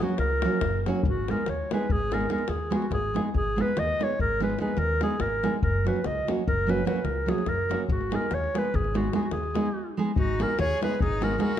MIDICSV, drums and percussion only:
0, 0, Header, 1, 2, 480
1, 0, Start_track
1, 0, Key_signature, 5, "minor"
1, 0, Tempo, 416378
1, 1208, Time_signature, 11, 3, 24, 8
1, 5524, Tempo, 412655
1, 13439, End_track
2, 0, Start_track
2, 0, Title_t, "Davul"
2, 101, Note_on_c, 9, 37, 27
2, 209, Note_off_c, 9, 37, 0
2, 209, Note_on_c, 9, 37, 66
2, 324, Note_off_c, 9, 37, 0
2, 347, Note_on_c, 9, 37, 23
2, 463, Note_off_c, 9, 37, 0
2, 485, Note_on_c, 9, 37, 78
2, 600, Note_off_c, 9, 37, 0
2, 604, Note_on_c, 9, 37, 29
2, 707, Note_off_c, 9, 37, 0
2, 707, Note_on_c, 9, 37, 77
2, 707, Note_on_c, 9, 43, 66
2, 822, Note_off_c, 9, 37, 0
2, 822, Note_off_c, 9, 43, 0
2, 852, Note_on_c, 9, 37, 20
2, 967, Note_off_c, 9, 37, 0
2, 996, Note_on_c, 9, 37, 62
2, 1096, Note_off_c, 9, 37, 0
2, 1096, Note_on_c, 9, 37, 29
2, 1192, Note_on_c, 9, 43, 92
2, 1212, Note_off_c, 9, 37, 0
2, 1307, Note_off_c, 9, 43, 0
2, 1480, Note_on_c, 9, 37, 59
2, 1581, Note_off_c, 9, 37, 0
2, 1581, Note_on_c, 9, 37, 26
2, 1687, Note_off_c, 9, 37, 0
2, 1687, Note_on_c, 9, 37, 61
2, 1803, Note_off_c, 9, 37, 0
2, 1972, Note_on_c, 9, 37, 74
2, 2087, Note_off_c, 9, 37, 0
2, 2090, Note_on_c, 9, 37, 26
2, 2184, Note_on_c, 9, 43, 79
2, 2205, Note_off_c, 9, 37, 0
2, 2299, Note_off_c, 9, 43, 0
2, 2442, Note_on_c, 9, 37, 59
2, 2543, Note_off_c, 9, 37, 0
2, 2543, Note_on_c, 9, 37, 25
2, 2651, Note_off_c, 9, 37, 0
2, 2651, Note_on_c, 9, 37, 54
2, 2749, Note_off_c, 9, 37, 0
2, 2749, Note_on_c, 9, 37, 26
2, 2856, Note_off_c, 9, 37, 0
2, 2856, Note_on_c, 9, 37, 61
2, 2972, Note_off_c, 9, 37, 0
2, 3135, Note_on_c, 9, 37, 64
2, 3251, Note_off_c, 9, 37, 0
2, 3253, Note_on_c, 9, 37, 28
2, 3362, Note_off_c, 9, 37, 0
2, 3362, Note_on_c, 9, 37, 59
2, 3362, Note_on_c, 9, 43, 59
2, 3477, Note_off_c, 9, 37, 0
2, 3477, Note_off_c, 9, 43, 0
2, 3642, Note_on_c, 9, 37, 59
2, 3758, Note_off_c, 9, 37, 0
2, 3856, Note_on_c, 9, 43, 74
2, 3971, Note_off_c, 9, 43, 0
2, 4128, Note_on_c, 9, 37, 52
2, 4243, Note_off_c, 9, 37, 0
2, 4247, Note_on_c, 9, 37, 23
2, 4344, Note_off_c, 9, 37, 0
2, 4344, Note_on_c, 9, 37, 66
2, 4459, Note_off_c, 9, 37, 0
2, 4621, Note_on_c, 9, 37, 57
2, 4732, Note_off_c, 9, 37, 0
2, 4732, Note_on_c, 9, 37, 23
2, 4835, Note_on_c, 9, 43, 66
2, 4847, Note_off_c, 9, 37, 0
2, 4950, Note_off_c, 9, 43, 0
2, 5078, Note_on_c, 9, 37, 45
2, 5185, Note_off_c, 9, 37, 0
2, 5185, Note_on_c, 9, 37, 28
2, 5287, Note_off_c, 9, 37, 0
2, 5287, Note_on_c, 9, 37, 50
2, 5397, Note_off_c, 9, 37, 0
2, 5397, Note_on_c, 9, 37, 21
2, 5496, Note_off_c, 9, 37, 0
2, 5496, Note_on_c, 9, 37, 49
2, 5612, Note_off_c, 9, 37, 0
2, 5776, Note_on_c, 9, 37, 60
2, 5889, Note_off_c, 9, 37, 0
2, 5889, Note_on_c, 9, 37, 25
2, 5997, Note_off_c, 9, 37, 0
2, 5997, Note_on_c, 9, 37, 63
2, 5997, Note_on_c, 9, 43, 49
2, 6113, Note_off_c, 9, 37, 0
2, 6113, Note_off_c, 9, 43, 0
2, 6275, Note_on_c, 9, 37, 61
2, 6391, Note_off_c, 9, 37, 0
2, 6493, Note_on_c, 9, 43, 78
2, 6609, Note_off_c, 9, 43, 0
2, 6774, Note_on_c, 9, 37, 55
2, 6887, Note_off_c, 9, 37, 0
2, 6887, Note_on_c, 9, 37, 23
2, 6981, Note_off_c, 9, 37, 0
2, 6981, Note_on_c, 9, 37, 60
2, 7097, Note_off_c, 9, 37, 0
2, 7260, Note_on_c, 9, 37, 61
2, 7372, Note_off_c, 9, 37, 0
2, 7372, Note_on_c, 9, 37, 21
2, 7482, Note_on_c, 9, 43, 74
2, 7489, Note_off_c, 9, 37, 0
2, 7598, Note_off_c, 9, 43, 0
2, 7737, Note_on_c, 9, 37, 56
2, 7840, Note_off_c, 9, 37, 0
2, 7840, Note_on_c, 9, 37, 24
2, 7945, Note_off_c, 9, 37, 0
2, 7945, Note_on_c, 9, 37, 64
2, 8048, Note_off_c, 9, 37, 0
2, 8048, Note_on_c, 9, 37, 24
2, 8148, Note_off_c, 9, 37, 0
2, 8148, Note_on_c, 9, 37, 57
2, 8264, Note_off_c, 9, 37, 0
2, 8424, Note_on_c, 9, 37, 65
2, 8538, Note_off_c, 9, 37, 0
2, 8538, Note_on_c, 9, 37, 27
2, 8632, Note_off_c, 9, 37, 0
2, 8632, Note_on_c, 9, 37, 59
2, 8632, Note_on_c, 9, 43, 60
2, 8749, Note_off_c, 9, 37, 0
2, 8749, Note_off_c, 9, 43, 0
2, 8917, Note_on_c, 9, 37, 64
2, 9033, Note_off_c, 9, 37, 0
2, 9123, Note_on_c, 9, 43, 73
2, 9239, Note_off_c, 9, 43, 0
2, 9265, Note_on_c, 9, 37, 22
2, 9381, Note_off_c, 9, 37, 0
2, 9395, Note_on_c, 9, 37, 60
2, 9511, Note_off_c, 9, 37, 0
2, 9511, Note_on_c, 9, 37, 23
2, 9614, Note_off_c, 9, 37, 0
2, 9614, Note_on_c, 9, 37, 65
2, 9731, Note_off_c, 9, 37, 0
2, 9765, Note_on_c, 9, 37, 24
2, 9882, Note_off_c, 9, 37, 0
2, 9899, Note_on_c, 9, 37, 65
2, 10012, Note_off_c, 9, 37, 0
2, 10012, Note_on_c, 9, 37, 22
2, 10120, Note_on_c, 9, 43, 70
2, 10128, Note_off_c, 9, 37, 0
2, 10236, Note_off_c, 9, 43, 0
2, 10238, Note_on_c, 9, 37, 22
2, 10354, Note_off_c, 9, 37, 0
2, 10364, Note_on_c, 9, 37, 52
2, 10480, Note_off_c, 9, 37, 0
2, 10574, Note_on_c, 9, 37, 63
2, 10687, Note_off_c, 9, 37, 0
2, 10687, Note_on_c, 9, 37, 25
2, 10785, Note_off_c, 9, 37, 0
2, 10785, Note_on_c, 9, 37, 59
2, 10901, Note_off_c, 9, 37, 0
2, 10925, Note_on_c, 9, 37, 19
2, 11041, Note_off_c, 9, 37, 0
2, 11064, Note_on_c, 9, 37, 67
2, 11180, Note_off_c, 9, 37, 0
2, 11181, Note_on_c, 9, 37, 24
2, 11298, Note_off_c, 9, 37, 0
2, 11772, Note_on_c, 9, 43, 88
2, 11888, Note_off_c, 9, 43, 0
2, 12047, Note_on_c, 9, 37, 59
2, 12163, Note_off_c, 9, 37, 0
2, 12165, Note_on_c, 9, 37, 26
2, 12265, Note_off_c, 9, 37, 0
2, 12265, Note_on_c, 9, 37, 66
2, 12381, Note_off_c, 9, 37, 0
2, 12543, Note_on_c, 9, 37, 66
2, 12647, Note_off_c, 9, 37, 0
2, 12647, Note_on_c, 9, 37, 24
2, 12751, Note_on_c, 9, 43, 85
2, 12764, Note_off_c, 9, 37, 0
2, 12867, Note_off_c, 9, 43, 0
2, 13001, Note_on_c, 9, 37, 56
2, 13107, Note_off_c, 9, 37, 0
2, 13107, Note_on_c, 9, 37, 30
2, 13210, Note_off_c, 9, 37, 0
2, 13210, Note_on_c, 9, 37, 59
2, 13317, Note_off_c, 9, 37, 0
2, 13317, Note_on_c, 9, 37, 29
2, 13433, Note_off_c, 9, 37, 0
2, 13439, End_track
0, 0, End_of_file